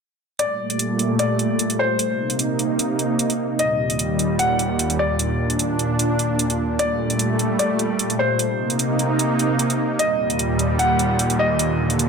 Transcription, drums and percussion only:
0.39 closed hi-hat medium
0.70 closed hi-hat medium
0.79 closed hi-hat medium
0.99 closed hi-hat medium
1.19 closed hi-hat medium
1.39 closed hi-hat medium
1.59 closed hi-hat medium
1.70 closed hi-hat medium
1.99 closed hi-hat medium
2.30 closed hi-hat medium
2.39 closed hi-hat medium
2.59 closed hi-hat medium
2.79 closed hi-hat medium
2.99 closed hi-hat medium
3.19 closed hi-hat medium
3.30 closed hi-hat medium
3.59 closed hi-hat medium
3.90 closed hi-hat medium
3.99 closed hi-hat medium
4.19 closed hi-hat medium
4.39 closed hi-hat medium
4.59 closed hi-hat soft
4.79 closed hi-hat medium
4.90 closed hi-hat medium
5.19 closed hi-hat medium
5.50 closed hi-hat soft
5.59 closed hi-hat medium
5.79 closed hi-hat soft
5.99 closed hi-hat medium
6.19 closed hi-hat soft
6.39 closed hi-hat medium
6.50 closed hi-hat soft
6.79 closed hi-hat medium
7.10 closed hi-hat soft
7.19 closed hi-hat medium
7.39 closed hi-hat soft
7.59 closed hi-hat medium
7.79 closed hi-hat soft
7.99 closed hi-hat medium
8.10 closed hi-hat soft
8.39 closed hi-hat medium
8.70 closed hi-hat soft
8.79 closed hi-hat medium
8.99 closed hi-hat soft
9.19 closed hi-hat medium
9.39 closed hi-hat soft
9.59 closed hi-hat medium
9.70 closed hi-hat soft
9.99 closed hi-hat medium
10.30 closed hi-hat soft
10.39 closed hi-hat medium
10.59 closed hi-hat medium
10.79 closed hi-hat medium
10.99 closed hi-hat soft
11.19 closed hi-hat medium
11.30 closed hi-hat soft
11.59 closed hi-hat medium
11.90 closed hi-hat medium
11.99 closed hi-hat medium

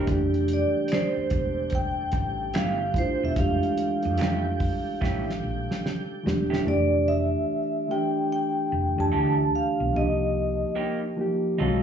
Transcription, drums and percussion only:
0.07 kick loud
0.07 closed hi-hat medium
0.34 closed hi-hat soft
0.48 closed hi-hat medium
0.88 finger snap medium
0.88 closed hi-hat medium
0.93 snare medium
1.30 kick medium
1.30 closed hi-hat medium
1.70 kick medium
1.70 closed hi-hat medium
2.12 kick medium
2.12 closed hi-hat medium
2.54 finger snap medium
2.54 snare loud
2.54 closed hi-hat medium
2.94 kick medium
2.94 closed hi-hat medium
3.36 kick loud
3.36 closed hi-hat medium
3.63 closed hi-hat soft
3.77 closed hi-hat medium
4.03 closed hi-hat soft
4.18 finger snap medium
4.18 closed hi-hat medium
4.22 snare loud
4.60 kick medium
4.60 open hi-hat soft
5.02 kick medium
5.02 snare soft
5.30 snare soft
5.71 snare medium
5.86 snare medium
6.27 snare medium
6.53 snare medium

